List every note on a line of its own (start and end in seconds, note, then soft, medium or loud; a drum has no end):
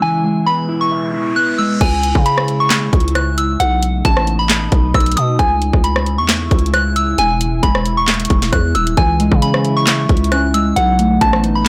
0.00 1.79 B2 medium
0.00 1.14 E3 medium
0.00 1.77 G#3 medium
0.00 1.77 E4 medium
0.00 0.44 G#5 loud
0.00 riser medium
0.24 1.36 G#3 medium
0.46 1.35 B3 medium
0.46 0.79 B5 medium
0.69 1.13 E4 loud
0.81 1.33 C#6 medium
0.91 1.81 E5 medium
1.14 1.81 E4 medium
1.36 1.81 B3 medium
1.36 1.57 F#6 medium
1.58 1.81 G#3 medium
1.58 1.79 E6 medium
1.81 2.14 C#2 loud
1.81 3.58 C#3 medium
1.81 3.58 G#3 medium
1.81 3.58 E4 medium
1.81 2.23 G#5 loud
1.81 kick loud
1.81 closed hi-hat medium
1.81 crash medium
2.03 closed hi-hat medium
2.15 2.90 C#3 loud
2.15 kick loud
2.26 2.58 B5 medium
2.26 closed hi-hat medium
2.38 cross-stick loud
2.48 closed hi-hat medium
2.60 3.12 C#6 medium
2.70 snare loud
2.70 clap medium
2.70 closed hi-hat medium
2.93 3.57 C#2 loud
2.93 kick medium
2.93 closed hi-hat medium
3.00 closed hi-hat medium
3.08 closed hi-hat medium
3.15 3.36 F#6 medium
3.15 cross-stick medium
3.15 closed hi-hat medium
3.38 3.58 E6 medium
3.38 closed hi-hat medium
3.60 4.03 B1 loud
3.60 5.37 B2 medium
3.60 5.37 A3 medium
3.60 5.37 D#4 medium
3.60 4.02 F#5 loud
3.60 closed hi-hat medium
3.83 closed hi-hat medium
4.05 4.69 A1 loud
4.05 4.37 A5 medium
4.05 kick loud
4.05 closed hi-hat medium
4.17 cross-stick loud
4.27 closed hi-hat medium
4.39 4.91 B5 medium
4.49 snare loud
4.49 clap loud
4.49 closed hi-hat medium
4.72 4.94 B1 loud
4.72 kick medium
4.72 closed hi-hat medium
4.94 5.16 B1 loud
4.94 5.15 E6 medium
4.94 kick medium
4.94 cross-stick medium
4.94 closed hi-hat soft
5.00 closed hi-hat medium
5.06 closed hi-hat medium
5.12 closed hi-hat medium
5.17 5.38 B2 loud
5.17 5.37 D#6 medium
5.17 closed hi-hat medium
5.39 5.72 C#2 loud
5.39 7.16 C#3 medium
5.39 10.72 G#3 medium
5.39 10.72 E4 medium
5.39 5.81 G#5 loud
5.39 kick loud
5.39 closed hi-hat medium
5.62 closed hi-hat medium
5.73 6.20 C#2 loud
5.73 kick loud
5.84 6.16 B5 medium
5.84 closed hi-hat medium
5.96 cross-stick loud
6.06 closed hi-hat medium
6.18 6.49 E2 loud
6.18 6.70 C#6 medium
6.29 snare loud
6.29 clap loud
6.29 closed hi-hat medium
6.51 7.16 C#2 loud
6.51 kick loud
6.51 closed hi-hat medium
6.59 closed hi-hat medium
6.66 closed hi-hat medium
6.74 6.94 F#6 medium
6.74 cross-stick medium
6.74 closed hi-hat medium
6.96 7.17 E6 medium
6.96 closed hi-hat medium
7.18 7.61 E1 loud
7.18 8.96 B2 medium
7.18 7.61 G#5 loud
7.18 closed hi-hat medium
7.41 closed hi-hat medium
7.63 8.28 E1 loud
7.63 7.95 B5 loud
7.63 kick loud
7.63 closed hi-hat medium
7.75 cross-stick loud
7.85 closed hi-hat medium
7.97 8.49 C#6 medium
8.08 snare loud
8.08 clap loud
8.08 closed hi-hat medium
8.14 closed hi-hat medium
8.20 closed hi-hat medium
8.25 closed hi-hat medium
8.30 8.52 E1 loud
8.30 kick loud
8.30 closed hi-hat medium
8.42 snare medium
8.53 8.74 E2 loud
8.53 8.73 F#6 medium
8.53 kick medium
8.53 cross-stick medium
8.53 closed hi-hat medium
8.75 8.96 D#1 loud
8.75 8.96 E6 medium
8.75 closed hi-hat medium
8.87 closed hi-hat medium
8.97 9.30 C#2 loud
8.97 10.75 C#3 medium
8.97 10.09 E3 medium
8.97 9.40 G#5 loud
8.97 kick loud
8.97 closed hi-hat medium
9.20 10.32 G#3 medium
9.20 closed hi-hat medium
9.32 10.06 C#3 loud
9.32 kick loud
9.42 10.31 C#4 medium
9.42 9.74 B5 medium
9.42 closed hi-hat medium
9.54 cross-stick loud
9.65 10.08 E4 medium
9.65 closed hi-hat medium
9.77 10.29 C#6 medium
9.87 10.77 E5 medium
9.87 snare loud
9.87 clap medium
9.87 closed hi-hat medium
10.09 10.74 C#2 loud
10.09 10.76 E4 medium
10.09 kick loud
10.09 closed hi-hat medium
10.17 closed hi-hat medium
10.24 closed hi-hat medium
10.32 10.77 C#4 medium
10.32 10.52 F#6 medium
10.32 cross-stick medium
10.32 closed hi-hat medium
10.54 10.76 G#3 medium
10.54 10.75 E6 medium
10.54 closed hi-hat medium
10.76 11.19 B1 loud
10.76 11.68 B2 medium
10.76 11.68 F#3 medium
10.76 11.68 A3 medium
10.76 11.68 D#4 medium
10.76 11.18 F#5 loud
10.76 closed hi-hat medium
10.99 11.68 A3 medium
10.99 closed hi-hat medium
11.21 11.68 A1 loud
11.21 11.68 B3 medium
11.21 11.53 A5 medium
11.21 kick loud
11.21 closed hi-hat medium
11.33 cross-stick loud
11.44 11.68 D#4 loud
11.44 closed hi-hat medium
11.55 11.68 B5 medium